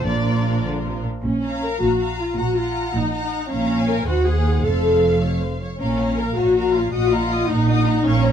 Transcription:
0.05 double bass section A#1, cello section A#2, viola section F3 D4, violin section F4 A#4 D5
0.65 cello section D3
0.85 cello section C3
1.04 cello section A#2
1.24 double bass section A#1, cello section A#2, viola section C#4
1.42 violin section F5 A#5
1.63 viola section A#4
1.80 double bass section A#1, cello section A#2, viola section F#4
2.00 violin section F5 A#5
2.19 viola section F4
2.37 double bass section A#1, cello section A#2, viola section F#4, violin section F#5 A#5
2.56 viola section F4, violin section F#5 A#5
2.94 double bass section A#1, cello section A#2, viola section D#4
3.12 violin section F#5 A#5
3.50 double bass section A#1, cello section A#2, viola section C#4, violin section C#5 F5 A#5
3.78 violin section G#5
3.89 viola section A#4
4.07 double bass section D#2, cello section D#2, viola section F#4, violin section C5 F#5
4.26 viola section G#4
4.64 double bass section F1, cello section F2, viola section A4, violin section C5 F5
5.21 violin section C#5
5.42 violin section C5
5.62 violin section C#5
5.80 double bass section A#1, cello section A#2, viola section C#4, violin section A#4 F5 A#5
5.99 violin section C#5 F5 A#5
6.18 viola section A#4, violin section A#4 F5 A#5
6.36 double bass section A#1, viola section F#4, violin section C#5 F5 A#5
6.56 violin section A#4 F5 A#5
6.76 viola section F4, violin section C#5 F5 A#5
6.92 double bass section A#1, cello section A#2, viola section F#4, violin section D#5 F#5 D#6
7.12 viola section F4, violin section D#5 F#5 A#5
7.31 violin section D#5 F#5 D#6
7.49 double bass section A#1, cello section A#2, viola section D#4, violin section D#5 F#5 A#5
7.69 violin section D#5 F#5 D#6
7.88 violin section D#5 F#5 A#5
8.06 double bass section A#1, cello section A#2, viola section C#4, violin section A#4 F5 C#6
8.25 violin section C#5 A#5

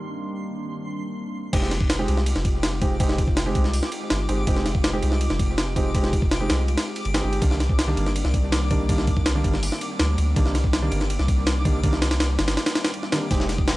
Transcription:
Already playing: grand piano D#3 G3 A#3 D4, ambient pad D#3 G3 A#3 C4 D4, synth texture C6
1.53 sub bass F1, grand piano G#3 C4 D#4 G4, ambient pad G#3 C4 D#4 F4 G4, synth texture D6, kick, crash, ride
1.62 snare
1.71 snare, ride
1.81 ambient pad G#3 C4 D#4 F4 G4, kick
1.90 snare, ride
1.99 grand piano G#3 C4 D#4 G4
2.08 sub bass C2, ride
2.17 snare
2.26 ride
2.36 sub bass F1, snare
2.45 ambient pad G#3 C4 D#4 F4 G4, kick, ride
2.63 snare, ride
2.81 ambient pad G#3 C4 D#4 F4 G4, grand piano G#3 C4 D#4 G4, kick, ride
3.00 ambient pad G#3 C4 D#4 F4 G4, grand piano G#3 C4 D#4 G4, kick, ride
3.09 snare
3.18 kick, ride
3.27 ambient pad G#3 C4 D#4 F4 G4, kick
3.37 snare, ride
3.46 grand piano G#3 C4 D#4 G4
3.55 sub bass C2, kick, ride
3.64 snare
3.73 open hi-hat
3.83 snare
3.92 ambient pad G#3 C4 D#4 F4 G4, ride
4.10 sub bass G1, snare, ride
4.29 sub bass G1, ambient pad G#3 C4 D#4 F4 G4, grand piano G#3 C4 D#4 G4, ride
4.47 sub bass F1, ambient pad G#3 C4 D#4 F4 G4, grand piano G#3 C4 D#4 G4, kick, ride
4.56 snare
4.66 snare, ride
4.75 ambient pad G#3 C4 D#4 F4 G4, kick
4.84 snare, ride
4.93 grand piano G#3 C4 D#4 G4
5.02 sub bass C2, ride
5.12 snare
5.21 ride
5.30 sub bass F1, snare
5.39 ambient pad G#3 C4 D#4 F4 G4, kick, ride
5.58 snare, ride
5.76 grand piano G#3 C4 D#4 G4, ambient pad G#3 C4 D#4 F4 G4, kick, ride
5.94 grand piano G#3 C4 D#4 G4, ambient pad G#3 C4 D#4 F4 G4, kick, ride
6.04 snare
6.13 kick, ride
6.22 ambient pad G#3 C4 D#4 F4 G4, kick
6.31 snare, ride
6.40 grand piano G#3 C4 D#4 G4
6.50 sub bass C2, snare, ride
6.68 ride
6.77 snare, ride
6.96 ride
7.05 sub bass G1, ride
7.14 grand piano G#3 C4 D#4 G4, snare, ride
7.23 sub bass G1, grand piano G#3 C4 D#4 G4
7.33 ride
7.42 sub bass C2, grand piano D#3 G3 A#3 D4, ambient pad D#3 G3 A#3 C4 D4, kick, ride
7.51 snare
7.60 snare, ride
7.69 ambient pad D#3 G3 A#3 C4 D4, kick
7.79 snare, ride
7.88 grand piano D#3 G3 A#3 D4
7.97 sub bass G1, ride
8.06 snare
8.16 ride
8.25 sub bass C2, snare
8.34 ambient pad D#3 G3 A#3 C4 D4, kick, ride
8.52 snare, ride
8.70 ambient pad D#3 G3 A#3 C4 D4, grand piano D#3 G3 A#3 D4, kick, ride
8.89 ambient pad D#3 G3 A#3 C4 D4, grand piano D#3 G3 A#3 D4, kick, ride
8.98 snare
9.07 kick, ride
9.17 ambient pad D#3 G3 A#3 C4 D4, kick
9.26 snare, ride
9.35 grand piano D#3 G3 A#3 D4
9.44 sub bass G1, kick, ride
9.54 snare
9.63 open hi-hat
9.72 snare
9.81 ambient pad D#3 G3 A#3 C4 D4, ride
9.99 sub bass D2, snare, ride
10.17 sub bass D2, ambient pad D#3 G3 A#3 C4 D4, ride
10.36 sub bass C2, grand piano D#3 G3 A#3 D4, ambient pad D#3 G3 A#3 C4 D4, kick, ride
10.46 snare
10.55 snare, ride
10.64 ambient pad D#3 G3 A#3 C4 D4, kick
10.73 snare, ride
10.82 grand piano D#3 G3 A#3 D4
10.92 sub bass G1, ride
11.01 snare
11.10 ride
11.19 sub bass C2, snare
11.28 ambient pad D#3 G3 A#3 C4 D4, kick, ride
11.47 snare, ride
11.65 grand piano D#3 G3 A#3 D4, ambient pad D#3 G3 A#3 C4 D4, kick, ride
11.83 ambient pad D#3 G3 A#3 C4 D4, grand piano D#3 G3 A#3 D4, kick, ride
11.93 snare
12.02 snare, ride
12.11 ambient pad D#3 G3 A#3 C4 D4, snare, ride
12.20 snare, ride
12.39 sub bass G1, snare, ride
12.48 snare, ride
12.57 snare, ride
12.66 snare, ride
12.75 ambient pad D#3 G3 A#3 C4 D4, snare, ride
12.84 snare, ride
12.94 ride
13.03 snare
13.12 grand piano D#3 G3 A#3 D4, ambient pad D#3 G3 A#3 C4 D4, snare, ride
13.31 sub bass F1, grand piano G#3 C4 D#4 G4, ambient pad G#3 C4 D#4 F4 G4, synth texture D#6, kick, closed hi-hat, ride
13.40 snare
13.49 snare, closed hi-hat, ride
13.58 ambient pad G#3 C4 D#4 F4 G4, kick
13.68 snare, closed hi-hat, ride

